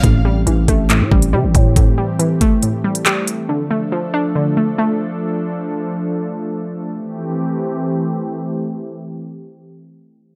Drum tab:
HH |x---x-x-x--x--x-|x---x-x-x--xx-x-|----------------|----------------|
CP |--------x-------|------------x---|----------------|----------------|
BD |o-----o---o---o-|o-----o---------|----------------|----------------|

HH |----------------|----------------|
CP |----------------|----------------|
BD |----------------|----------------|